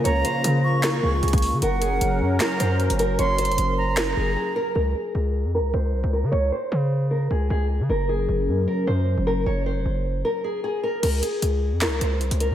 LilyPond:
<<
  \new Staff \with { instrumentName = "Flute" } { \time 4/4 \key des \major \tempo 4 = 153 bes''4. des'''2~ des'''8 | ges''2 bes''4 r4 | c'''4. bes''2~ bes''8 | r1 |
r1 | r1 | r1 | r1 | }
  \new Staff \with { instrumentName = "Nylon-string guitar" } { \time 4/4 \key des \major des''8 c''4. bes'8 aes'8 aes'8 r8 | bes'8 aes'4. bes'8 c''4 bes'8 | des''8 c''4. bes'8 aes'8 aes'8 bes'8 | bes'8 aes'4. bes'8 c''4 bes'8 |
des''8 c''4. bes'8 aes'8 aes'8 r8 | bes'8 aes'4. bes'8 c''4 bes'8 | des''8 c''4. bes'8 aes'8 aes'8 bes'8 | bes'8 aes'4. bes'8 c''4 bes'8 | }
  \new Staff \with { instrumentName = "Analog synth pad" } { \time 4/4 \key des \major <des bes f'>1 | <ges des' bes'>1~ | <ges des' bes'>1 | r1 |
r1 | <ges des' bes'>1~ | <ges des' bes'>2 r2 | r1 | }
  \new Staff \with { instrumentName = "808-style bass" } { \clef bass \time 4/4 \key des \major des,8 r8 des4. des,8 des,8. des16 | ges,,4 ges,,8 ges,8 r8 ges,8. ges,,8. | ges,,8. f,,16 ges,,4. ges,,8 r4 | des,8 r8 des,8. f,16. des,16. des,8 c,16 des,8 des16 |
des,8 r8 des4. des,8 des,8. des16 | ges,,4 ges,,8 ges,8 r8 ges,8. ges,,8. | ges,,8. f,,16 ges,,4 r2 | des,8 r8 des,8. f,16. des,16. des,8 c,16 des,8 des16 | }
  \new DrumStaff \with { instrumentName = "Drums" } \drummode { \time 4/4 hh8 hh8 hh4 <hc hh sn>4 hh32 hh32 <hh bd>32 hh32 hho8 | hh8 hh8 hh4 <hc hh sn>8 hh8 hh16 hh16 hh8 | \tuplet 3/2 { hh16 r16 r16 hh16 hh16 hh16 } hh4 <hc hh sn>4 r4 | r4 r4 r4 r4 |
r4 r4 r4 r4 | r4 r4 r4 r4 | r4 r4 r4 r4 | <cymc hh>8 hh8 hh4 <hc hh sn>8 hh8 hh16 hh16 hh8 | }
>>